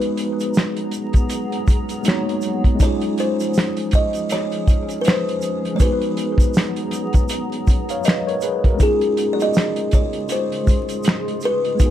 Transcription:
Already playing: F#3 G#3 B3 D#4 F#4 G#4 B4 A#5
0.01 closed hi-hat
0.17 closed hi-hat, shaker
0.40 closed hi-hat, shaker
0.54 snare, closed hi-hat, shaker
0.58 finger snap
0.77 closed hi-hat
0.91 closed hi-hat, shaker
1.13 kick, closed hi-hat, shaker
1.29 closed hi-hat, shaker
1.52 closed hi-hat
1.67 kick, closed hi-hat, shaker
1.89 closed hi-hat, shaker
2.03 G#3 A#3 D#4, closed hi-hat, shaker
2.07 B3 F#4 C#5, finger snap, snare
2.29 closed hi-hat
2.41 closed hi-hat, shaker
2.64 kick, closed hi-hat
2.75 G#3 C#4
2.79 F3 C#4 D#4 G#4 C#5, kick, closed hi-hat, shaker
2.83 F4 G#4
3.01 closed hi-hat
3.18 C5, closed hi-hat, shaker
3.40 closed hi-hat, shaker
3.54 snare, shaker
3.58 finger snap, closed hi-hat
3.77 closed hi-hat
3.91 D#5, kick, closed hi-hat, shaker
4.13 closed hi-hat, shaker
4.29 C#5, snare, closed hi-hat, shaker
4.52 closed hi-hat
4.67 kick, closed hi-hat, shaker
4.89 closed hi-hat, shaker
5.01 B4, closed hi-hat, shaker
5.07 C5, finger snap, snare
5.29 closed hi-hat
5.42 closed hi-hat, shaker
5.65 closed hi-hat
5.75 G#3 B3 C#5
5.80 F#3 B3 D#4 F#4 B4 A#5, kick, closed hi-hat, shaker
5.86 G#4
5.93 B4
6.01 closed hi-hat
6.17 closed hi-hat, shaker
6.38 kick, closed hi-hat, shaker
6.54 snare, closed hi-hat, shaker
6.58 finger snap
6.76 closed hi-hat
6.91 closed hi-hat, shaker
7.13 kick, closed hi-hat, shaker
7.29 closed hi-hat, shaker
7.52 closed hi-hat
7.67 kick, closed hi-hat, shaker
7.89 C#5 F5, closed hi-hat, shaker
8.04 B4 D#5, snare, closed hi-hat, shaker
8.09 finger snap
8.27 A#4 C#5, closed hi-hat
8.41 G#4 B4, closed hi-hat, shaker
8.64 F#4 A#4, kick, closed hi-hat
8.75 G#3 C#4
8.80 C#3 G#3 D#4 F4 G#4, kick, closed hi-hat, shaker
8.86 G#4
9.01 closed hi-hat
9.17 closed hi-hat, shaker
9.33 D5
9.40 D#5, closed hi-hat, shaker
9.54 snare, closed hi-hat, shaker
9.58 finger snap
9.76 closed hi-hat
9.91 C#5, kick, closed hi-hat, shaker
10.13 closed hi-hat
10.29 C5, closed hi-hat, shaker
10.52 closed hi-hat
10.67 kick, closed hi-hat, shaker
10.89 closed hi-hat, shaker
11.04 closed hi-hat, shaker
11.08 finger snap, snare
11.28 closed hi-hat
11.41 closed hi-hat, shaker
11.45 B4
11.64 closed hi-hat
11.75 G#3 B3
11.79 B2 D#4 F#4 A#5, kick, closed hi-hat, shaker
11.86 G#4

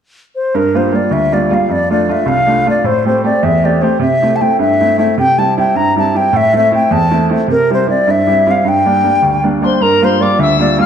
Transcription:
0.35 C5
0.55 G2 A#4
0.74 G3 A#3 F4 C5
0.92 G3 A#3 F4 D5
1.11 D2 E5
1.32 G3 A#3 F4 D5
1.50 G3 A#3 F4 F5
1.69 F2 D5
1.90 A3 D4 F4 D5
2.09 A3 D4 F4 E5
2.26 C2 F5
2.47 A3 D4 F4
2.66 A3 D4 F4 D5
2.84 A2 C5
3.05 A3 C4 G4 C5
3.24 A3 C4 G4 D5
3.43 E2 E5
3.64 A3 C4 G4 D5
3.81 A3 C4 G4 C5
4.00 C3 E5
4.22 A3 C4 E4
4.36 A5
4.41 A3 C4 E4 G5
4.59 G2 E5
4.81 A3 C4 E4
4.98 A3 C4 E4 E5
5.18 C3 G5
5.38 G3 C4 E4 A5
5.57 G3 C4 E4 G5
5.75 G2 A#5
5.96 G3 C4 E4 A5
6.14 G3 C4 E4 G5
6.33 A2 E5
6.53 A3 C4 E4
6.58 E5
6.71 A3 C4 E4 G5
6.91 E2 A5
7.11 A3 C4 E4
7.30 A3 C4 E4
7.48 C3 A#4
7.70 G3 C4 E4 C5
7.87 G3 C4 E4 D5
8.07 G2 E5
8.27 G3 C4 E4
8.46 G3 C4 E4
8.51 F5
8.65 G2 G5
8.86 G3 A#3 D4
9.03 G3 A#3 D4
9.22 D2
9.43 G3 A#3 D4
9.62 G3 A#3 D4 C5 C6
9.80 G2 A#4 A#5
10.02 G3 A#3 F4 C5 C6
10.20 G3 A#3 F4 D5 D6
10.39 D2 E5 E6
10.60 G3 A#3 F4 D5
10.78 G3 A#3 F4 F5 F6

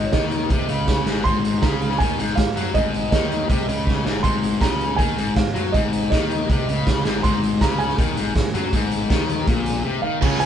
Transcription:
Already playing: G#1 G#2
0.05 C#5
0.12 D#2 D#3 D#5, kick, snare, closed hi-hat
0.31 closed hi-hat
0.50 C2 C3, kick, closed hi-hat
0.69 C#2 C#3, closed hi-hat
0.88 kick, snare, closed hi-hat
1.06 G#1 G#2, snare, closed hi-hat
1.24 G#1 G#2 C6, kick, closed hi-hat
1.45 closed hi-hat
1.62 C#2 C#3 A#5, kick, snare, closed hi-hat
1.81 closed hi-hat
1.91 snare
1.98 D#2 D#3 G#5, kick, closed hi-hat
2.18 G#1 G#2, closed hi-hat
2.35 G#1 G#2 F5, kick, snare, closed hi-hat
2.56 F#2 F#3, closed hi-hat
2.74 G#1 G#2 D#5, kick, closed hi-hat
2.94 closed hi-hat
3.11 D#2 D#3 D#5, kick, snare, closed hi-hat
3.32 closed hi-hat
3.50 C2 C3, kick, closed hi-hat
3.68 C#2 C#3, closed hi-hat
3.87 kick, snare
4.05 G#1 G#2, snare
4.23 G#1 G#2 C6, kick, closed hi-hat
4.43 closed hi-hat
4.60 C#2 C#3 A#5, kick, snare, closed hi-hat
4.81 closed hi-hat
4.96 D#2 D#3 G#5, kick, closed hi-hat
5.17 G#1 G#2, closed hi-hat
5.36 G#1 G#2 F5, kick, snare, closed hi-hat
5.54 F#2 F#3, closed hi-hat
5.72 G#1 G#2 D#5, kick, closed hi-hat
5.93 closed hi-hat
6.10 D#2 D#3 D#5, kick, snare, closed hi-hat
6.31 closed hi-hat
6.49 C2 C3, kick, closed hi-hat
6.69 C#2 C#3, closed hi-hat
6.87 kick, snare, closed hi-hat
7.05 G#1 G#2, snare, closed hi-hat
7.23 G#1 G#2 C6, kick, closed hi-hat
7.43 closed hi-hat
7.61 C#2 C#3 A#5, kick, snare, closed hi-hat
7.79 G#5, closed hi-hat
7.89 snare
7.98 D#2 D#3, kick, closed hi-hat
8.17 G#1 G#2, closed hi-hat
8.35 G#1 G#2, kick, snare, closed hi-hat
8.54 F#2 F#3, closed hi-hat
8.73 G#1 G#2, kick, closed hi-hat
8.91 closed hi-hat
9.09 D#2 D#3, kick, snare, closed hi-hat
9.29 closed hi-hat
9.47 A#1 A#2, kick, closed hi-hat
9.66 closed hi-hat
9.85 C3
10.02 D#3 F5
10.21 C#2 C#3 G#3 C#4 F4 G#4, kick, crash
10.40 C#2 G#5, closed hi-hat

